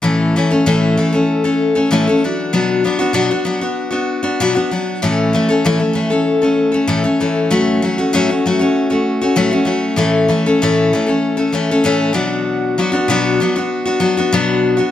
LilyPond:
\new Staff \with { instrumentName = "Steel-string acoustic guitar" } { \time 4/4 \key a \major \tempo 4 = 96 <a, e a cis' a'>8 <e a cis' a'>16 <a cis' a'>16 <a, e a cis' a'>8 <e a cis' a'>16 <a cis' a'>8 <a cis' a'>8 <a cis' a'>16 <a, e a cis' a'>16 <a cis' a'>16 <fis b d' fis'>8 | <b, fis b d' fis'>8 <fis b d' fis'>16 <b d' fis'>16 <b, fis b d' fis'>16 <b d' fis'>16 <fis b d' fis'>16 <b d' fis'>8 <b d' fis'>8 <b d' fis'>16 <b, fis b d' fis'>16 <b d' fis'>16 <fis b d' fis'>8 | <a, e a cis' a'>8 <e a cis' a'>16 <a cis' a'>16 <a, e a cis' a'>16 <a cis' a'>16 <e a cis' a'>16 <a cis' a'>8 <a cis' a'>8 <a cis' a'>16 <a, e a cis' a'>16 <a cis' a'>16 <e a cis' a'>8 | <a, fis a cis' fis'>8 <fis a cis' fis'>16 <a cis' fis'>16 <a, fis a cis' fis'>16 <a cis' fis'>16 <fis a cis' fis'>16 <a cis' fis'>8 <a cis' fis'>8 <a cis' fis'>16 <a, fis a cis' fis'>16 <a cis' fis'>16 <fis a cis' fis'>8 |
<a, e a cis' a'>8 <e a cis' a'>16 <a cis' a'>16 <a, e a cis' a'>8 <e a cis' a'>16 <a cis' a'>8 <a cis' a'>16 <e a cis' a'>16 <a cis' a'>16 <a, e a cis' a'>8 <b, fis b d' fis'>8~ | <b, fis b d' fis'>8 <fis b d' fis'>16 <b d' fis'>16 <b, fis b d' fis'>8 <fis b d' fis'>16 <b d' fis'>8 <b d' fis'>16 <fis b d' fis'>16 <b d' fis'>16 <b, fis b d' fis'>8. <b d' fis'>16 | }